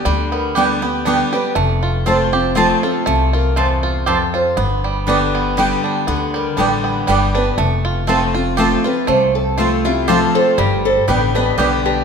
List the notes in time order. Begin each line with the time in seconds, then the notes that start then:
Already playing: D4 G4
0.05 D2 D3 G3
0.32 B3 A#4
0.55 D3 G3 B3 G4 B4 D5 G5
0.82 B3 G4
1.05 D3 G3 B3 D4 G4 D5 G5
1.33 G3 B3 G4 B4
1.55 F1 F2 A3
1.83 F4
2.06 F3 A3 C4 F4 C5 A5
2.33 C4 F4 G4
2.55 F3 A3 C4 F4 C5 A5
2.83 C4 F4 A4
3.06 C2 C3 A3
3.33 F4 A#4
3.56 E2 A3 C4 F4 C5 A5
3.83 F4
4.06 F2 C4 F4 G4 C5 A5
4.34 F4 C5
4.57 G1 G2 B3
4.84 G3
5.07 D3 G3 B3 D4 G4 B4 D5 G5
5.35 B3
5.57 D3 G3 B3 G4 D5 G5
5.84 D4 G4
6.07 D2 D3 B3
6.34 G3 A#4
6.57 A1 D3 G3 B3 D4 G4 B4 D5 G5
6.84 B3
7.07 G1 D3 G3 B3 G4 D5 G5
7.35 B3 D4 G4 B4
7.58 F1 F2 A3
7.85 F4
8.07 F3 A3 C4 F4 C5 A5
8.34 C4 F4
8.57 F3 A3 C4 F4 G4 A4 C5 A5
8.84 C4 F4 B4
9.07 C2 C3 A3 C5
9.35 A4
9.58 F3 A3 C4 F4 C5 A5
9.85 C4 E4 F4 G4
10.08 F3 A3 C4 F4 G4 A4 C5 A5
10.35 F4 A4 C5
10.58 G1 G2 G3 G4 B4
10.85 A4 C5
11.08 A1 D3 G3 B3 G4 B4 D5 G5
11.35 B3 D4 G4 B4 D#5
11.58 B1 D3 G3 B3 G4 B4 D5 G5
11.85 D4 G4 B4